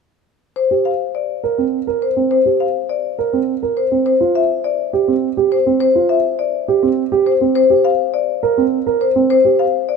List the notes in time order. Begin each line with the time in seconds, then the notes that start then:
0.56 C5
0.71 G4
0.85 F5
1.15 D5
1.44 A#4
1.58 C4
1.87 A#4
2.02 C5
2.17 C4
2.31 C5
2.46 G4
2.60 F5
2.89 D5
3.19 A#4
3.33 C4
3.63 A#4
3.77 C5
3.92 C4
4.06 C5
4.21 F4
4.35 E5
4.64 D5
4.93 G4
5.08 C4
5.37 G4
5.52 C5
5.66 C4
5.80 C5
5.95 F4
6.09 E5
6.39 D5
6.68 G4
6.83 C4
7.12 G4
7.26 C5
7.41 C4
7.55 C5
7.70 G4
7.85 F5
8.14 D5
8.43 A#4
8.58 C4
8.87 A#4
9.01 C5
9.16 C4
9.30 C5
9.45 G4
9.59 F5
9.89 D5